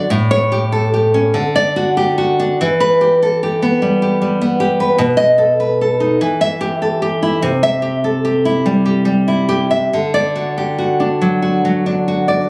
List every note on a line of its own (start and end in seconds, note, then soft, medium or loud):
0.10 1.31 A2 medium
0.31 0.64 C#5 medium
0.52 0.92 G4 medium
0.72 1.35 A4 medium
0.94 1.35 G4 medium
1.14 1.35 C#4 medium
1.34 2.55 D3 medium
1.56 1.88 D5 loud
1.76 2.17 F#4 medium
1.97 2.59 G4 medium
2.18 2.59 F#4 medium
2.40 2.59 D4 medium
2.61 4.97 E3 medium
2.80 3.13 B4 medium
3.01 3.42 G4 medium
3.22 4.42 A4 medium
3.43 4.01 G4 medium
3.62 4.40 B3 medium
3.82 4.20 G3 medium
4.02 4.59 G4 medium
4.22 5.00 G3 medium
4.42 5.00 B3 medium
4.60 4.99 G4 medium
4.80 5.00 B4 medium
4.98 6.18 B2 loud
5.17 5.51 D#5 medium
5.38 5.80 A4 medium
5.60 6.22 B4 medium
5.81 6.22 A4 medium
6.00 6.21 D#4 medium
6.21 7.39 E3 medium
6.41 6.74 E5 loud
6.61 7.01 G4 medium
6.82 7.42 A4 medium
7.02 7.42 G4 medium
7.22 7.43 E4 medium
7.42 9.88 C3 medium
7.63 7.96 E5 medium
7.82 8.23 G4 medium
8.04 9.28 A4 medium
8.25 8.84 G4 medium
8.45 9.27 E4 medium
8.66 9.04 G3 medium
8.86 9.47 G4 medium
9.05 9.92 G3 medium
9.28 9.70 E4 medium
9.49 9.92 G4 medium
9.71 9.92 E5 medium
9.93 12.47 D3 medium
10.14 10.48 D5 medium
10.36 10.77 F#4 medium
10.58 11.86 G4 medium
10.78 11.41 F#4 medium
11.00 11.85 D4 medium
11.22 11.64 F#3 medium
11.42 12.07 F#4 medium
11.65 12.48 F#3 medium
11.86 12.49 D4 medium
12.08 12.49 F#4 medium
12.28 12.49 D5 medium